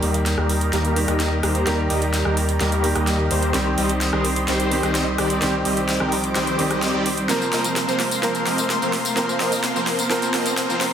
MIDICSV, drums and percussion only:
0, 0, Header, 1, 2, 480
1, 0, Start_track
1, 0, Tempo, 468750
1, 1708, Time_signature, 4, 2, 24, 8
1, 11193, End_track
2, 0, Start_track
2, 0, Title_t, "Drums"
2, 26, Note_on_c, 9, 46, 103
2, 128, Note_off_c, 9, 46, 0
2, 146, Note_on_c, 9, 42, 52
2, 249, Note_off_c, 9, 42, 0
2, 266, Note_on_c, 9, 38, 47
2, 266, Note_on_c, 9, 42, 82
2, 369, Note_off_c, 9, 38, 0
2, 369, Note_off_c, 9, 42, 0
2, 386, Note_on_c, 9, 37, 70
2, 488, Note_off_c, 9, 37, 0
2, 506, Note_on_c, 9, 46, 95
2, 609, Note_off_c, 9, 46, 0
2, 627, Note_on_c, 9, 42, 50
2, 730, Note_off_c, 9, 42, 0
2, 748, Note_on_c, 9, 38, 45
2, 748, Note_on_c, 9, 42, 78
2, 850, Note_off_c, 9, 38, 0
2, 850, Note_off_c, 9, 42, 0
2, 867, Note_on_c, 9, 42, 38
2, 969, Note_off_c, 9, 42, 0
2, 987, Note_on_c, 9, 46, 102
2, 1090, Note_off_c, 9, 46, 0
2, 1107, Note_on_c, 9, 37, 64
2, 1107, Note_on_c, 9, 42, 58
2, 1210, Note_off_c, 9, 37, 0
2, 1210, Note_off_c, 9, 42, 0
2, 1227, Note_on_c, 9, 38, 50
2, 1227, Note_on_c, 9, 42, 79
2, 1329, Note_off_c, 9, 38, 0
2, 1329, Note_off_c, 9, 42, 0
2, 1467, Note_on_c, 9, 37, 74
2, 1467, Note_on_c, 9, 46, 107
2, 1569, Note_off_c, 9, 37, 0
2, 1569, Note_off_c, 9, 46, 0
2, 1587, Note_on_c, 9, 42, 50
2, 1689, Note_off_c, 9, 42, 0
2, 1707, Note_on_c, 9, 38, 55
2, 1707, Note_on_c, 9, 42, 81
2, 1810, Note_off_c, 9, 38, 0
2, 1810, Note_off_c, 9, 42, 0
2, 1947, Note_on_c, 9, 46, 105
2, 2049, Note_off_c, 9, 46, 0
2, 2067, Note_on_c, 9, 42, 53
2, 2169, Note_off_c, 9, 42, 0
2, 2187, Note_on_c, 9, 38, 53
2, 2187, Note_on_c, 9, 42, 78
2, 2290, Note_off_c, 9, 38, 0
2, 2290, Note_off_c, 9, 42, 0
2, 2307, Note_on_c, 9, 37, 76
2, 2409, Note_off_c, 9, 37, 0
2, 2427, Note_on_c, 9, 46, 107
2, 2529, Note_off_c, 9, 46, 0
2, 2547, Note_on_c, 9, 42, 53
2, 2649, Note_off_c, 9, 42, 0
2, 2667, Note_on_c, 9, 38, 55
2, 2667, Note_on_c, 9, 42, 78
2, 2769, Note_off_c, 9, 38, 0
2, 2769, Note_off_c, 9, 42, 0
2, 2787, Note_on_c, 9, 42, 38
2, 2889, Note_off_c, 9, 42, 0
2, 2907, Note_on_c, 9, 46, 106
2, 3009, Note_off_c, 9, 46, 0
2, 3026, Note_on_c, 9, 37, 67
2, 3026, Note_on_c, 9, 42, 55
2, 3129, Note_off_c, 9, 37, 0
2, 3129, Note_off_c, 9, 42, 0
2, 3146, Note_on_c, 9, 38, 55
2, 3146, Note_on_c, 9, 42, 76
2, 3249, Note_off_c, 9, 38, 0
2, 3249, Note_off_c, 9, 42, 0
2, 3387, Note_on_c, 9, 46, 116
2, 3489, Note_off_c, 9, 46, 0
2, 3507, Note_on_c, 9, 42, 52
2, 3609, Note_off_c, 9, 42, 0
2, 3627, Note_on_c, 9, 38, 60
2, 3627, Note_on_c, 9, 42, 79
2, 3730, Note_off_c, 9, 38, 0
2, 3730, Note_off_c, 9, 42, 0
2, 3868, Note_on_c, 9, 46, 106
2, 3970, Note_off_c, 9, 46, 0
2, 3988, Note_on_c, 9, 42, 50
2, 4090, Note_off_c, 9, 42, 0
2, 4108, Note_on_c, 9, 38, 58
2, 4108, Note_on_c, 9, 42, 79
2, 4210, Note_off_c, 9, 38, 0
2, 4210, Note_off_c, 9, 42, 0
2, 4228, Note_on_c, 9, 37, 78
2, 4330, Note_off_c, 9, 37, 0
2, 4348, Note_on_c, 9, 46, 102
2, 4450, Note_off_c, 9, 46, 0
2, 4468, Note_on_c, 9, 42, 50
2, 4571, Note_off_c, 9, 42, 0
2, 4588, Note_on_c, 9, 38, 61
2, 4588, Note_on_c, 9, 42, 75
2, 4690, Note_off_c, 9, 38, 0
2, 4690, Note_off_c, 9, 42, 0
2, 4708, Note_on_c, 9, 42, 36
2, 4810, Note_off_c, 9, 42, 0
2, 4828, Note_on_c, 9, 46, 108
2, 4931, Note_off_c, 9, 46, 0
2, 4948, Note_on_c, 9, 37, 70
2, 4948, Note_on_c, 9, 42, 51
2, 5051, Note_off_c, 9, 37, 0
2, 5051, Note_off_c, 9, 42, 0
2, 5069, Note_on_c, 9, 38, 67
2, 5069, Note_on_c, 9, 42, 79
2, 5171, Note_off_c, 9, 38, 0
2, 5171, Note_off_c, 9, 42, 0
2, 5308, Note_on_c, 9, 37, 86
2, 5308, Note_on_c, 9, 46, 112
2, 5411, Note_off_c, 9, 37, 0
2, 5411, Note_off_c, 9, 46, 0
2, 5428, Note_on_c, 9, 42, 49
2, 5531, Note_off_c, 9, 42, 0
2, 5548, Note_on_c, 9, 38, 67
2, 5548, Note_on_c, 9, 42, 79
2, 5651, Note_off_c, 9, 38, 0
2, 5651, Note_off_c, 9, 42, 0
2, 5788, Note_on_c, 9, 46, 106
2, 5890, Note_off_c, 9, 46, 0
2, 5908, Note_on_c, 9, 42, 50
2, 6011, Note_off_c, 9, 42, 0
2, 6028, Note_on_c, 9, 38, 67
2, 6028, Note_on_c, 9, 42, 74
2, 6130, Note_off_c, 9, 38, 0
2, 6130, Note_off_c, 9, 42, 0
2, 6147, Note_on_c, 9, 37, 80
2, 6250, Note_off_c, 9, 37, 0
2, 6267, Note_on_c, 9, 46, 102
2, 6370, Note_off_c, 9, 46, 0
2, 6387, Note_on_c, 9, 42, 50
2, 6489, Note_off_c, 9, 42, 0
2, 6507, Note_on_c, 9, 38, 68
2, 6507, Note_on_c, 9, 42, 74
2, 6609, Note_off_c, 9, 38, 0
2, 6609, Note_off_c, 9, 42, 0
2, 6627, Note_on_c, 9, 42, 35
2, 6730, Note_off_c, 9, 42, 0
2, 6747, Note_on_c, 9, 46, 101
2, 6849, Note_off_c, 9, 46, 0
2, 6867, Note_on_c, 9, 37, 70
2, 6867, Note_on_c, 9, 42, 52
2, 6969, Note_off_c, 9, 37, 0
2, 6969, Note_off_c, 9, 42, 0
2, 6987, Note_on_c, 9, 38, 70
2, 6987, Note_on_c, 9, 42, 74
2, 7090, Note_off_c, 9, 38, 0
2, 7090, Note_off_c, 9, 42, 0
2, 7227, Note_on_c, 9, 46, 113
2, 7329, Note_off_c, 9, 46, 0
2, 7347, Note_on_c, 9, 42, 48
2, 7449, Note_off_c, 9, 42, 0
2, 7467, Note_on_c, 9, 38, 75
2, 7467, Note_on_c, 9, 42, 82
2, 7474, Note_on_c, 9, 54, 61
2, 7570, Note_off_c, 9, 38, 0
2, 7570, Note_off_c, 9, 42, 0
2, 7576, Note_off_c, 9, 54, 0
2, 7594, Note_on_c, 9, 54, 33
2, 7696, Note_off_c, 9, 54, 0
2, 7707, Note_on_c, 9, 38, 71
2, 7707, Note_on_c, 9, 46, 95
2, 7810, Note_off_c, 9, 38, 0
2, 7810, Note_off_c, 9, 46, 0
2, 7828, Note_on_c, 9, 42, 49
2, 7835, Note_on_c, 9, 54, 67
2, 7931, Note_off_c, 9, 42, 0
2, 7937, Note_off_c, 9, 54, 0
2, 7948, Note_on_c, 9, 38, 80
2, 7948, Note_on_c, 9, 42, 71
2, 7955, Note_on_c, 9, 54, 55
2, 8051, Note_off_c, 9, 38, 0
2, 8051, Note_off_c, 9, 42, 0
2, 8057, Note_off_c, 9, 54, 0
2, 8075, Note_on_c, 9, 54, 34
2, 8177, Note_off_c, 9, 54, 0
2, 8188, Note_on_c, 9, 38, 77
2, 8188, Note_on_c, 9, 46, 103
2, 8291, Note_off_c, 9, 38, 0
2, 8291, Note_off_c, 9, 46, 0
2, 8308, Note_on_c, 9, 42, 51
2, 8315, Note_on_c, 9, 54, 66
2, 8411, Note_off_c, 9, 42, 0
2, 8417, Note_off_c, 9, 54, 0
2, 8428, Note_on_c, 9, 38, 79
2, 8428, Note_on_c, 9, 42, 75
2, 8435, Note_on_c, 9, 54, 55
2, 8531, Note_off_c, 9, 38, 0
2, 8531, Note_off_c, 9, 42, 0
2, 8537, Note_off_c, 9, 54, 0
2, 8548, Note_on_c, 9, 42, 35
2, 8555, Note_on_c, 9, 54, 32
2, 8651, Note_off_c, 9, 42, 0
2, 8657, Note_off_c, 9, 54, 0
2, 8668, Note_on_c, 9, 38, 75
2, 8668, Note_on_c, 9, 46, 107
2, 8770, Note_off_c, 9, 38, 0
2, 8770, Note_off_c, 9, 46, 0
2, 8788, Note_on_c, 9, 42, 52
2, 8795, Note_on_c, 9, 54, 72
2, 8891, Note_off_c, 9, 42, 0
2, 8897, Note_off_c, 9, 54, 0
2, 8908, Note_on_c, 9, 38, 81
2, 8908, Note_on_c, 9, 42, 74
2, 8915, Note_on_c, 9, 54, 57
2, 9011, Note_off_c, 9, 38, 0
2, 9011, Note_off_c, 9, 42, 0
2, 9017, Note_off_c, 9, 54, 0
2, 9034, Note_on_c, 9, 54, 34
2, 9136, Note_off_c, 9, 54, 0
2, 9147, Note_on_c, 9, 38, 83
2, 9147, Note_on_c, 9, 46, 109
2, 9250, Note_off_c, 9, 38, 0
2, 9250, Note_off_c, 9, 46, 0
2, 9268, Note_on_c, 9, 42, 53
2, 9274, Note_on_c, 9, 54, 71
2, 9370, Note_off_c, 9, 42, 0
2, 9377, Note_off_c, 9, 54, 0
2, 9388, Note_on_c, 9, 38, 82
2, 9388, Note_on_c, 9, 42, 81
2, 9394, Note_on_c, 9, 54, 61
2, 9490, Note_off_c, 9, 38, 0
2, 9490, Note_off_c, 9, 42, 0
2, 9497, Note_off_c, 9, 54, 0
2, 9514, Note_on_c, 9, 54, 35
2, 9617, Note_off_c, 9, 54, 0
2, 9628, Note_on_c, 9, 38, 82
2, 9628, Note_on_c, 9, 46, 96
2, 9730, Note_off_c, 9, 38, 0
2, 9730, Note_off_c, 9, 46, 0
2, 9748, Note_on_c, 9, 42, 54
2, 9754, Note_on_c, 9, 54, 69
2, 9850, Note_off_c, 9, 42, 0
2, 9857, Note_off_c, 9, 54, 0
2, 9868, Note_on_c, 9, 38, 89
2, 9868, Note_on_c, 9, 42, 80
2, 9874, Note_on_c, 9, 54, 57
2, 9970, Note_off_c, 9, 38, 0
2, 9970, Note_off_c, 9, 42, 0
2, 9977, Note_off_c, 9, 54, 0
2, 9994, Note_on_c, 9, 54, 34
2, 10097, Note_off_c, 9, 54, 0
2, 10108, Note_on_c, 9, 38, 85
2, 10108, Note_on_c, 9, 46, 98
2, 10211, Note_off_c, 9, 38, 0
2, 10211, Note_off_c, 9, 46, 0
2, 10228, Note_on_c, 9, 42, 52
2, 10234, Note_on_c, 9, 54, 69
2, 10330, Note_off_c, 9, 42, 0
2, 10336, Note_off_c, 9, 54, 0
2, 10348, Note_on_c, 9, 38, 84
2, 10348, Note_on_c, 9, 42, 80
2, 10354, Note_on_c, 9, 54, 58
2, 10450, Note_off_c, 9, 38, 0
2, 10450, Note_off_c, 9, 42, 0
2, 10456, Note_off_c, 9, 54, 0
2, 10467, Note_on_c, 9, 42, 39
2, 10474, Note_on_c, 9, 54, 37
2, 10570, Note_off_c, 9, 42, 0
2, 10576, Note_off_c, 9, 54, 0
2, 10587, Note_on_c, 9, 38, 87
2, 10587, Note_on_c, 9, 46, 104
2, 10689, Note_off_c, 9, 38, 0
2, 10689, Note_off_c, 9, 46, 0
2, 10708, Note_on_c, 9, 42, 56
2, 10714, Note_on_c, 9, 54, 73
2, 10810, Note_off_c, 9, 42, 0
2, 10817, Note_off_c, 9, 54, 0
2, 10828, Note_on_c, 9, 38, 91
2, 10828, Note_on_c, 9, 42, 83
2, 10834, Note_on_c, 9, 54, 56
2, 10930, Note_off_c, 9, 38, 0
2, 10930, Note_off_c, 9, 42, 0
2, 10937, Note_off_c, 9, 54, 0
2, 10954, Note_on_c, 9, 54, 35
2, 11057, Note_off_c, 9, 54, 0
2, 11068, Note_on_c, 9, 38, 97
2, 11068, Note_on_c, 9, 46, 102
2, 11170, Note_off_c, 9, 38, 0
2, 11170, Note_off_c, 9, 46, 0
2, 11193, End_track
0, 0, End_of_file